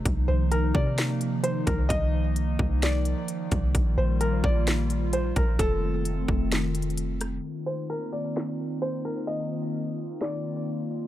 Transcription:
0.00 3.71 F3 medium
0.05 0.28 C2 loud
0.05 5.55 D#3 medium
0.05 3.71 A#3 medium
0.05 3.71 D#4 medium
0.05 kick loud
0.05 closed hi-hat medium
0.28 0.73 C2 loud
0.28 0.50 C5 medium
0.52 0.73 A#4 medium
0.52 closed hi-hat medium
0.74 1.63 C3 loud
0.74 0.96 D5 medium
0.74 kick loud
0.98 snare loud
0.98 closed hi-hat medium
1.21 closed hi-hat medium
1.44 1.66 C5 medium
1.44 closed hi-hat medium
1.67 1.89 C2 loud
1.67 1.89 A#4 medium
1.67 kick loud
1.67 closed hi-hat medium
1.89 2.57 C2 loud
1.89 2.78 D#5 loud
1.89 kick loud
1.89 closed hi-hat medium
2.36 closed hi-hat medium
2.59 3.15 C2 loud
2.59 kick medium
2.82 3.26 D5 medium
2.82 snare loud
2.82 closed hi-hat medium
3.05 closed hi-hat medium
3.28 closed hi-hat medium
3.51 3.74 C2 loud
3.51 kick loud
3.51 closed hi-hat medium
3.75 3.97 A#1 loud
3.75 5.58 G3 medium
3.75 5.57 A#3 medium
3.75 7.40 F4 medium
3.75 kick loud
3.75 closed hi-hat medium
3.98 4.42 A#1 loud
3.98 4.20 C5 medium
4.21 4.43 A#4 medium
4.21 closed hi-hat medium
4.44 5.32 A#1 loud
4.44 4.66 D5 medium
4.44 kick medium
4.67 snare loud
4.67 closed hi-hat medium
4.90 closed hi-hat medium
5.13 5.35 C5 medium
5.13 closed hi-hat medium
5.36 5.58 A#1 loud
5.36 5.58 A#4 medium
5.36 kick loud
5.36 closed hi-hat medium
5.59 6.26 F1 loud
5.59 7.42 D#3 medium
5.59 7.42 A3 medium
5.59 7.42 C4 medium
5.59 6.47 A4 loud
5.59 kick loud
5.59 closed hi-hat medium
6.05 closed hi-hat medium
6.28 7.40 F1 loud
6.28 kick medium
6.52 snare loud
6.52 closed hi-hat medium
6.75 closed hi-hat medium
6.82 closed hi-hat medium
6.90 closed hi-hat soft
6.97 closed hi-hat medium
7.21 cross-stick medium
7.21 closed hi-hat medium
7.44 11.07 D#3 medium
7.44 11.07 A#3 medium
7.44 11.07 C4 medium
7.44 11.07 D#4 medium
7.44 11.07 F4 medium
7.66 7.89 C5 medium
7.90 8.12 A#4 medium
8.13 8.35 D5 medium
8.37 snare loud
8.82 9.04 C5 medium
9.05 9.27 A#4 medium
9.27 10.16 D#5 medium
10.21 10.64 D5 medium
10.21 snare loud

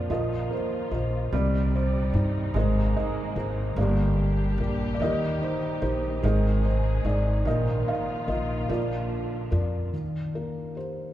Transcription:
0.00 1.29 A#2 medium
0.00 1.28 F3 medium
0.00 0.18 A#3 medium
0.00 0.11 F4 soft
0.00 0.12 A#4 soft
0.00 0.11 C5 medium
0.00 0.12 D5 medium
0.00 0.11 F5 medium
0.10 0.48 A#1 medium
0.10 1.32 D#3 medium
0.10 1.33 F3 medium
0.10 1.29 A#3 medium
0.10 1.32 D#4 medium
0.10 1.31 F4 medium
0.10 0.90 A#4 medium
0.10 0.52 D#5 medium
0.51 1.41 A#3 medium
0.51 0.93 C5 medium
0.90 1.30 A#1 medium
0.90 1.31 F4 soft
0.90 1.31 A#4 soft
0.90 1.35 C5 medium
0.90 1.31 D#5 soft
1.32 2.10 C2 medium
1.32 3.76 C3 medium
1.32 3.75 D#3 medium
1.32 2.55 G3 medium
1.32 2.54 G3 medium
1.32 2.52 C4 medium
1.32 3.76 D#4 medium
1.32 2.53 G4 soft
1.32 2.55 D5 medium
1.32 1.76 D5 medium
1.76 2.13 C5 medium
2.13 2.52 G2 medium
2.13 2.54 D#4 medium
2.13 2.54 C5 soft
2.13 2.54 D5 soft
2.54 2.93 G#1 medium
2.54 3.85 G#3 medium
2.54 3.74 G#3 medium
2.54 3.77 G#3 medium
2.54 3.77 A#3 medium
2.54 3.35 A#4 medium
2.54 2.95 D#5 medium
2.58 3.36 C5 medium
2.95 3.85 D#4 medium
2.95 3.34 D#5 medium
3.36 3.74 G#1 medium
3.36 3.76 G#4 soft
3.36 3.76 A#4 soft
3.36 3.77 C5 soft
3.76 4.55 G1 medium
3.76 6.21 A#2 medium
3.76 5.00 D3 medium
3.76 4.97 G3 medium
3.76 6.21 G3 medium
3.76 5.08 A#3 medium
3.76 5.00 D4 medium
3.76 6.21 G4 medium
3.76 4.58 G4 medium
3.76 4.59 A#4 medium
3.76 4.59 D5 medium
4.58 4.97 A#1 medium
4.58 4.99 G4 soft
4.58 5.00 A#4 soft
4.58 4.93 D5 soft
4.95 5.01 D5 medium
5.00 5.38 D#2 medium
5.00 6.22 D#3 medium
5.00 8.65 D#3 medium
5.00 6.19 D#3 medium
5.00 8.66 D#4 medium
5.00 5.39 D#5 medium
5.04 5.80 G4 medium
5.04 5.81 A#4 medium
5.41 6.31 D#4 medium
5.41 5.80 C5 medium
5.81 6.20 A#1 medium
5.81 6.21 D#4 soft
5.81 6.22 G4 soft
5.81 6.22 A#4 soft
5.81 6.24 C5 medium
6.22 7.01 G#1 medium
6.22 7.45 C3 medium
6.22 7.44 D#3 medium
6.22 7.42 G#3 medium
6.22 7.45 G#3 medium
6.22 7.44 G#4 medium
6.22 6.66 D#5 medium
6.26 7.03 G#4 medium
6.26 6.63 C5 medium
6.64 7.04 C5 medium
7.04 7.43 G#1 medium
7.04 7.44 D#4 soft
7.04 7.45 G#4 soft
7.04 7.45 C5 medium
7.04 7.47 D5 medium
7.44 7.84 A#1 medium
7.44 9.89 A#2 medium
7.44 8.69 D#3 medium
7.44 9.89 F3 medium
7.44 8.65 A#3 medium
7.44 9.89 F4 medium
7.44 7.89 D#5 medium
7.50 8.26 A#4 medium
7.88 8.78 D#4 medium
7.88 8.30 F5 medium
8.27 8.66 A#1 medium
8.27 8.68 D#4 soft
8.27 8.68 F4 soft
8.27 8.68 A#4 soft
8.27 8.71 D#5 medium
8.67 9.47 A#1 medium
8.67 9.90 D3 medium
8.67 10.00 F3 medium
8.67 9.89 A#3 medium
8.67 9.90 D4 medium
8.67 9.50 A#4 soft
8.67 9.51 D5 medium
8.72 9.49 F4 soft
9.51 9.90 F2 medium
9.51 9.91 F4 soft
9.51 9.91 A#4 soft
9.51 9.92 D5 soft
9.93 11.12 D#3 soft
10.34 11.13 A#3 soft
10.34 10.77 A#4 medium
10.75 11.13 G4 soft
10.75 11.13 C5 medium

